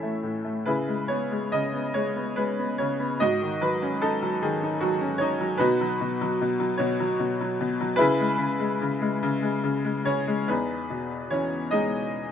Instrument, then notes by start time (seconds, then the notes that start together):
upright piano
Already playing: A2 E3 A3 C#4 E4 A4 C#5 E5
0.03 A3
0.23 A2
0.45 A3
0.66 C#3 E4 G#4 B4
0.88 G#3
1.08 B3 C#5
1.31 G#3
1.52 C#3 D#5
1.73 B3
1.94 G#3 C#5
2.16 B3
2.36 G#3 B4
2.59 B3
2.78 C#3 C#5
3.00 B3
3.20 G#2 F#4 D#5
3.42 D#3
3.61 F#3 B4
3.82 C#4
4.02 D#4 A4
4.23 F#3
4.42 D#3 G#4
4.63 D#4
4.80 F#3 F#4
5.01 C#4
5.18 D#4 C#5
5.40 F#3
5.58 B2 D#4 F#4 B4
5.81 F#3
6.01 B2
6.21 F#3
6.41 B2
6.60 F#3
6.78 B2 F#4 C#5
7.00 F#3
7.20 B2
7.41 F#3
7.61 B2
7.81 F#3
7.96 C#3 E4 G#4 B4
8.20 G#3
8.38 C#3
8.59 G#3
8.81 C#3
9.01 G#3
9.23 C#3
9.42 G#3
9.64 C#3
9.84 G#3
10.05 C#3 C#4 C#5
10.27 G#3
10.48 E2 B3 D#4 G#4 B4
10.90 B2
11.30 E3 C#4 C#5
11.71 G#3 D#4 G#4 D#5